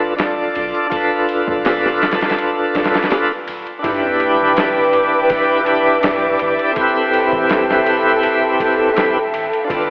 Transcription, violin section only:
3.84 B4 E5 G5 D6
6.75 A4 G5
9.69 B4 F5 G5 D6

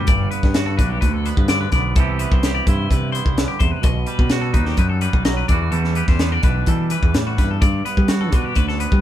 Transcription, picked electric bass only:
0.08 G1
0.44 G2
0.79 B1
1.03 D2
1.37 G2
1.73 B1
1.96 C2
2.32 C2
2.67 G2
2.91 C3
3.26 C2
3.60 E2
3.84 B1
4.19 B2
4.54 D#2
4.78 F#2
5.14 B1
5.50 E2
5.72 E2
6.08 E2
6.43 B1
6.67 E3
7.03 E2
7.15 A2
7.39 G2
7.62 G2
7.98 G3
8.32 B2
8.57 D2
8.92 G3

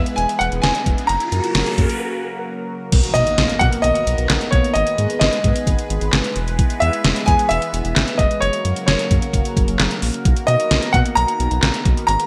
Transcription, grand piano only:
0.16 G#5
0.39 F#5
0.62 G#5
1.07 A#5
3.14 D#5
3.59 F#5
3.82 D#5
4.51 C#5
4.74 D#5
5.20 D#5
6.80 E5
7.26 G#5
7.49 E5
8.18 D#5
8.41 C#5
8.86 C#5
10.47 D#5
10.93 F#5
11.15 A#5
12.07 A#5

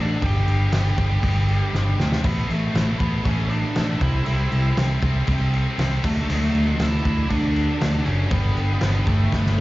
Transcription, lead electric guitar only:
0.01 D4 D5
0.25 G4 G5
2.25 B3 B4
2.49 A3 A4
2.98 B3 B4
3.25 C#4 C#5
3.50 D4 D5
4.00 E4 E5
4.25 E4 E5
6.05 A3 A4
6.20 A3 A4
6.32 A3 A4
6.82 E4 E5
7.29 D4 D5
8.05 C#4 C#5
8.31 B3 B4
9.08 A3 A4

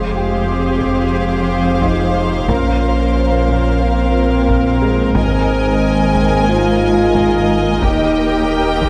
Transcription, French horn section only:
Already playing: G#3
0.49 C4
1.15 C4
1.82 D#4
2.49 C#4
3.83 C4
5.15 C4
6.49 F4
7.83 D#4

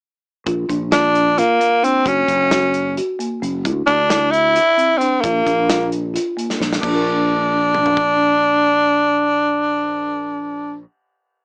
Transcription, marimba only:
0.46 F4
0.69 D4
0.92 F4
1.38 F4
1.60 A#3
1.83 D4
2.06 F#4
2.29 C#4
2.52 F#4
2.98 F#4
3.19 A#3
3.42 C#4
3.65 E4
3.88 D4
4.10 E4
4.55 E4
4.77 C4
5.01 D4
5.23 F4
5.46 D4
5.69 F4
6.14 F4
6.37 A#3
6.60 D4
6.82 A#3 D4
6.90 F4
6.94 A#4

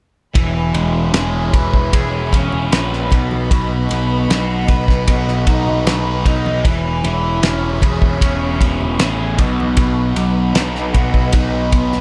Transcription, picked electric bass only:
0.35 E1
0.74 E1
1.13 E1
1.53 E1
1.93 E1
2.72 A#1
3.12 B1
3.50 B1
3.91 B1
4.29 B1
4.68 B1
5.08 B1
5.86 B1
6.26 B1
6.65 E1
7.04 E1
7.42 E1
7.82 E1
8.22 E1
8.99 A1
9.39 B1
9.78 B1
10.15 B1
10.54 B1
10.95 B1
11.33 B1

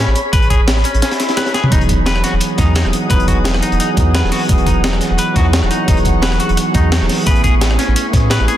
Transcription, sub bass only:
0.08 A1
0.33 A1
0.60 A1
0.94 A1
1.72 E1
1.98 E1
2.33 E1
2.58 E2
2.85 E1
3.10 E1
3.37 E1
3.72 E1
3.97 E2
4.24 E1
4.49 E1
4.76 E1
5.10 E1
5.36 E2
5.62 E1
5.88 E1
6.15 E1
6.49 E1
6.75 E2
7.01 E1
7.27 A1
7.53 A1
7.88 A1
8.13 A2
8.40 A1

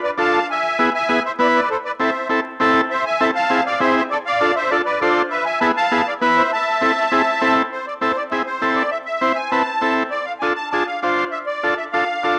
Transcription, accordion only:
0.03 B4 D5
0.19 F5 A5
0.50 E5 G#5
0.94 E5 G#5
1.25 C5 E5
1.40 B4 D5
1.55 B4 D5
1.70 A4 C5
1.85 B4 D5
2.00 C5 E5
2.90 C5 E5
3.06 E5 G#5
3.21 E5 A5
3.35 F5 A5
3.66 D5 F5
3.81 C5 E5
3.97 C5 E5
4.10 A4 D5
4.26 D5 F5
4.56 C5 E5
4.70 A4 D5
4.85 B4 D5
5.00 A4 D5
5.30 B4 E5
5.45 E5 G#5
5.60 E5 A5
5.77 F5 A5
6.07 D5 F5
6.21 B4 E5
6.37 C5 E5
6.53 E5 A5
7.72 C5
7.87 D5
8.01 C5
8.16 D5
8.31 E5
8.46 C5
8.76 D5
8.91 E5
9.06 E5
9.35 G#5
9.51 A5
10.11 D5
10.25 F5
10.40 G#5
10.56 A5
10.71 A5
10.87 F5
11.01 F5
11.16 F5
11.31 E5
11.46 D5
11.77 E5
11.92 F5

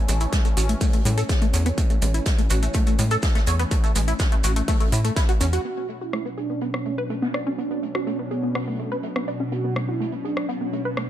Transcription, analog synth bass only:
0.08 A1
0.57 A1
1.05 A2
1.54 E2
2.02 A1
2.50 A1
2.99 A2
3.47 E2
3.96 A1
4.44 A1
4.92 A2
5.41 E2

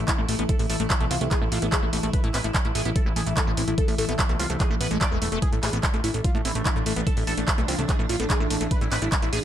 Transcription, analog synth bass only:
0.18 A1
0.29 A1
0.39 A1
0.59 A1
0.70 A1
0.80 A1
1.00 B1
1.11 C2
1.21 C2
1.42 A1
1.52 A1
1.62 A1
1.83 A1
1.93 A1
2.03 A1
2.24 A1
2.34 A1
2.44 A1
2.65 A1
2.75 A1
2.85 A1
3.06 A1
3.16 A1
3.27 A1
3.47 A1
3.57 A1
3.68 A1
3.88 A1
3.98 A1
4.09 A1
4.29 B1
4.40 C2
4.50 C2
4.70 A1
4.81 A1
4.91 A1
5.11 E1
5.22 E1
5.32 E1
5.53 A1
5.63 A1
5.73 A1
5.94 A1
6.04 A1
6.14 A1
6.35 A1
6.45 A1
6.55 A1
6.76 A1
6.86 A1
6.96 A1
7.17 A1
7.27 A1
7.37 A1
7.58 B1
7.68 C2
7.79 C2
7.99 A1
8.09 A1
8.20 A1
8.40 A1
8.51 A1
8.61 A1
8.81 A1
8.92 A1
9.02 A1
9.22 A1
9.33 A1

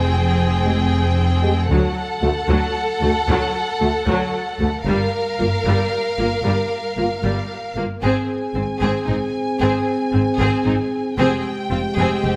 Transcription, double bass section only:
Already playing: F1
1.69 D2
2.23 D2
2.49 D2
3.02 D2
3.28 D2
3.81 D2
4.07 D2
4.60 D2
4.86 G1
5.40 G1
5.66 G1
6.19 G1
6.44 G1
6.97 G1
7.24 G1
7.76 G1
8.03 G#1
8.56 G#1
8.81 G#1
9.08 G#1
9.60 G#1
10.13 G#1
10.39 G#1
10.66 G#1
11.19 F1
11.71 F1
11.98 F1
12.24 F1

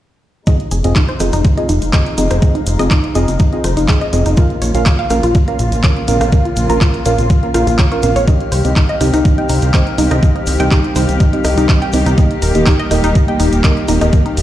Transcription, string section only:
0.47 C3 F3 G#3 D#4
4.37 C#3 A#3 F4
8.28 D#3 G3 C4 G4
12.18 A#3
14.13 C4

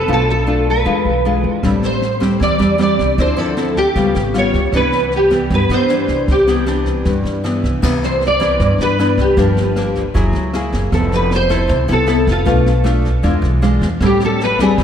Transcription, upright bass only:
0.08 B1
0.86 E2
1.05 B1
1.44 E2
1.63 A1
2.41 E2
2.60 E2
2.99 C2
3.18 D2
3.96 C#2
4.15 G#1
4.54 C#2
4.73 C2
5.50 G2
5.69 G2
6.09 C2
6.28 C2
7.06 G2
7.24 G2
7.64 C2
7.83 C2
8.60 G2
8.79 G2
9.18 C2
9.37 G1
10.15 F#1
10.33 C#2
10.73 F#1
10.92 F1
11.69 C2
11.89 C2
12.27 F1
12.47 B1
13.24 E2
13.42 B1
13.81 E2
14.01 A1
14.78 E2

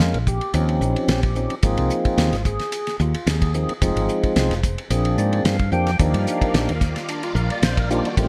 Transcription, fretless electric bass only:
0.00 F2
0.14 A#1
0.54 D#2
0.81 A#1
0.95 muted fretless electric bass stroke
1.08 A#1
1.63 G#1
1.78 C2
2.18 D#2
2.32 G#1
3.00 D#2
3.14 muted fretless electric bass stroke
3.26 D#2
3.68 muted fretless electric bass stroke
3.82 F1
3.96 G#1
4.24 muted fretless electric bass stroke
4.36 C2
4.50 F1
4.90 A#1
5.18 G#2
5.45 G2
5.72 F2
5.99 D#2
6.14 G2
6.41 muted fretless electric bass stroke
6.54 A#1
6.69 D#2
7.35 A#1
7.62 A#1
8.17 A1

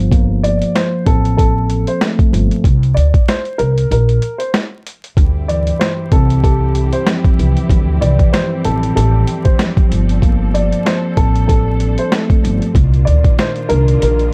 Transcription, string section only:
5.18 G3 C4 E4 G4
9.92 D4 A4
12.77 D#3 A#3 D4 F4

